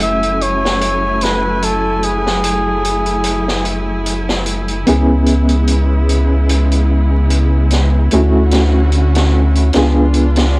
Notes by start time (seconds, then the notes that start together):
Already playing: F#1 F#3 A3 C#4 E4 F#4 G#5
0.00 E5, closed hi-hat
0.23 closed hi-hat
0.41 C#5, closed hi-hat
0.65 snare
0.81 closed hi-hat
1.21 B4, snare, closed hi-hat
1.62 A4, closed hi-hat
2.03 G#4, closed hi-hat
2.27 snare
2.44 closed hi-hat
2.85 closed hi-hat
3.06 closed hi-hat
3.24 closed hi-hat
3.48 snare
3.65 closed hi-hat
4.06 closed hi-hat
4.29 snare
4.46 closed hi-hat
4.68 closed hi-hat
4.87 C#2 C#3 G#3 B3 C#4 E4 G#4, closed hi-hat
5.26 closed hi-hat
5.49 closed hi-hat
5.67 closed hi-hat
6.09 closed hi-hat
6.49 closed hi-hat
6.71 closed hi-hat
7.30 closed hi-hat
7.71 snare, closed hi-hat
8.11 D2 D3 A3 C#4 E4 F#4, closed hi-hat
8.51 snare, closed hi-hat
8.92 closed hi-hat
9.15 snare, closed hi-hat
9.55 closed hi-hat
9.73 C#2 B3 D4 F4 G#4, snare, closed hi-hat
10.14 closed hi-hat
10.36 snare, closed hi-hat